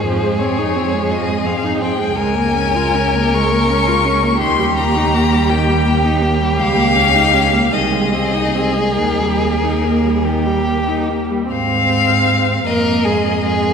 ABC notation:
X:1
M:6/8
L:1/16
Q:3/8=54
K:Ab
V:1 name="Violin"
c2 d4 e2 f2 g2 | a6 d'6 | c'2 b4 g4 z2 | f6 e6 |
B8- B2 z2 | f6 e6 |]
V:2 name="Violin"
A12 | B12 | G12- | G6 A6- |
A6 G4- G z | z6 B2 A2 A2 |]
V:3 name="Viola"
F, A, C E C A, F, A, C E C A, | A, B, D F D B, A, B, D F D B, | E, G, B, E B, G, E, G, B, E B, G, | G, B, D E D B, E, A, C E C A, |
E, G, B, E B, G, E, G, B, E B, G, | C6 B,2 A,2 A,2 |]
V:4 name="Cello" clef=bass
F,,12 | D,,12 | E,,12 | D,,6 C,,6 |
E,,8- E,,3 z | A,,6 F,,6 |]